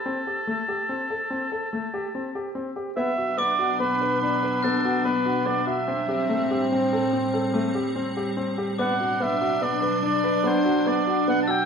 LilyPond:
<<
  \new Staff \with { instrumentName = "Glockenspiel" } { \time 7/4 \key b \phrygian \tempo 4 = 144 r1. r4 | r4 d'''2~ d'''8 r8 fis'''2~ fis'''8 r8 | r1. r4 | d'''2~ d'''8 r1 e'''8 | }
  \new Staff \with { instrumentName = "Oboe" } { \time 7/4 \key b \phrygian a'1. r4 | e''4 d''4 b'4 b'4 a'4 b'4 d''8 e''8~ | e''2~ e''8 r1 r8 | fis''4 e''4 d''4 d''4 c''4 d''4 \tuplet 3/2 { fis''8 a''16 g''8. } | }
  \new Staff \with { instrumentName = "Grand piano" } { \time 7/4 \key b \phrygian c'8 g'8 a8 g'8 c'8 a'8 c'8 a'8 a8 g'8 c'8 g'8 c'8 g'8 | b8 fis'8 b8 fis'8 b8 b'8 d'8 b'8 b8 fis'8 b8 fis'8 b8 fis'8 | c'8 g'8 a8 g'8 c'8 a'8 c'8 a'8 a8 g'8 c'8 g'8 c'8 g'8 | b8 fis'8 b8 fis'8 b8 b'8 d'8 b'8 b8 fis'8 b8 fis'8 b8 fis'8 | }
  \new Staff \with { instrumentName = "French horn" } { \time 7/4 \key b \phrygian r1. r4 | b1.~ b4 | c'1.~ c'8 r8 | d'1.~ d'4 | }
  \new Staff \with { instrumentName = "Ambient pad" } { \clef bass \time 7/4 \key b \phrygian r1. r4 | <b, fis d'>1.~ <b, fis d'>4 | <a, g c'>1.~ <a, g c'>4 | <b, fis d'>1.~ <b, fis d'>4 | }
>>